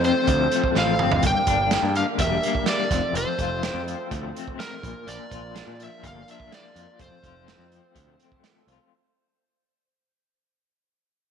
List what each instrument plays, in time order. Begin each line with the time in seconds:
Already playing: picked electric bass F2, clean electric guitar F2 A3 C4, tonewheel organ A3 C4 F4 A4
0.03 clean electric guitar C3, electric slide guitar C5, closed hi-hat
0.27 picked electric bass D2, clean electric guitar F3, kick, closed hi-hat
0.52 clean electric guitar A3, closed hi-hat
0.64 kick
0.75 picked electric bass A1, clean electric guitar F3, electric slide guitar F5, snare
0.99 picked electric bass G1, clean electric guitar C4, mid tom
1.12 floor tom
1.23 picked electric bass G1, clean electric guitar G2, tonewheel organ A#3 D4 G4 A#4, kick, closed hi-hat
1.27 electric slide guitar G5
1.47 picked electric bass G1, clean electric guitar D4, kick, closed hi-hat
1.71 clean electric guitar A#3, snare, closed hi-hat
1.83 picked electric bass G2
1.95 clean electric guitar D3, electric slide guitar F5, closed hi-hat
2.18 picked electric bass E1, clean electric guitar G3, electric slide guitar E5, kick, closed hi-hat
2.42 clean electric guitar A#3, closed hi-hat
2.55 kick
2.66 clean electric guitar G3, electric slide guitar D5, snare, closed hi-hat
2.91 picked electric bass F1, clean electric guitar F2, tonewheel organ A3 C4 F4 A4, kick, snare, closed hi-hat
3.13 picked electric bass F1, clean electric guitar F2, closed hi-hat
3.17 electric slide guitar C5
3.39 picked electric bass F1, clean electric guitar F4, kick, closed hi-hat
3.63 clean electric guitar C4, snare, closed hi-hat
3.74 picked electric bass F2
3.88 clean electric guitar F3, closed hi-hat
4.11 picked electric bass D2, clean electric guitar A3, kick, closed hi-hat
4.35 clean electric guitar C4, closed hi-hat
4.48 kick
4.58 clean electric guitar A3, electric slide guitar A#4, snare, closed hi-hat
4.80 picked electric bass A#1, clean electric guitar A#2, tonewheel organ A#3 D4 A#4, kick, closed hi-hat
5.07 picked electric bass A#1, clean electric guitar A#2, electric slide guitar D5, closed hi-hat
5.30 picked electric bass A#1, clean electric guitar F4, kick, closed hi-hat
5.55 clean electric guitar D4, snare, closed hi-hat
5.67 picked electric bass A#2
5.79 clean electric guitar F3, closed hi-hat
5.84 electric slide guitar E5
6.03 picked electric bass G1, clean electric guitar A#3, kick, closed hi-hat
6.07 electric slide guitar F5
6.28 clean electric guitar D4, electric slide guitar E5, closed hi-hat
6.40 kick
6.52 clean electric guitar A#3, electric slide guitar D5, snare, closed hi-hat
6.74 picked electric bass F2, clean electric guitar F4, closed hi-hat
6.98 picked electric bass F1, clean electric guitar F2, tonewheel organ A3 C4 F4 A4, kick, closed hi-hat
7.02 electric slide guitar C5
7.23 picked electric bass F1, clean electric guitar F4, kick, closed hi-hat
7.47 clean electric guitar C4, snare, closed hi-hat
7.58 picked electric bass F2
7.70 clean electric guitar F3, closed hi-hat
7.95 picked electric bass D2, clean electric guitar A3, kick, closed hi-hat
8.18 clean electric guitar C4, closed hi-hat
8.32 kick
8.43 clean electric guitar A3, snare, closed hi-hat
8.67 picked electric bass C2, clean electric guitar F4, closed hi-hat